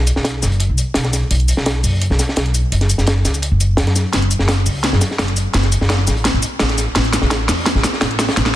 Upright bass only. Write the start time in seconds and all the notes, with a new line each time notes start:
Already playing: B1
0.16 B1
0.43 F#1
0.69 B1
0.96 B1
1.31 B1
1.57 B1
1.84 F#1
2.10 B1
2.37 B1
2.72 F#1
2.99 F#1
3.25 C#2
3.51 F#1
3.78 F#2
4.13 F#1
4.40 F#1
4.66 C#2
4.93 F#1
5.19 F#1
5.54 F#1
5.81 F#1
6.07 A1
6.34 A1
6.60 A1
6.96 A1
7.22 A1
7.48 E2
7.75 A1
8.02 A1
8.37 A1